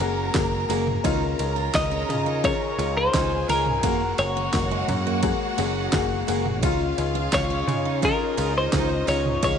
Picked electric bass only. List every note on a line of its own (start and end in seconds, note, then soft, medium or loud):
0.00 0.29 F#1 loud
0.35 0.64 F#1 medium
0.69 0.98 F#1 medium
1.05 1.34 C#2 medium
1.39 1.68 C#2 medium
1.74 2.03 C#2 loud
2.09 2.52 C#3 medium
2.78 3.08 C#2 loud
3.14 3.43 C#2 loud
3.49 3.84 C#2 medium
3.84 4.13 F#1 loud
4.19 4.48 F#1 loud
4.53 4.82 F#1 loud
4.89 5.32 F#2 loud
5.59 5.87 F#1 loud
5.93 6.22 F#1 medium
6.28 6.63 F#1 loud
6.63 6.92 C#2 loud
6.98 7.27 C#2 medium
7.33 7.62 C#2 loud
7.68 8.11 C#3 loud
8.38 8.67 C#2 loud
8.73 9.02 C#2 loud
9.08 9.37 C#2 medium
9.43 9.59 C#2 loud